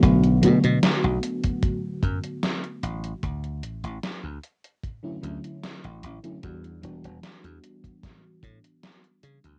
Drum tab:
HH |xxxxx-xxx-xxxxxx|xxxxx-xxx-xxxxxx|xxxxxxxxx-xxxxxx|
SD |----o-------o---|----o-------o---|----o---o---o---|
BD |o------oo-o-----|o-------o-------|o------oo-o-----|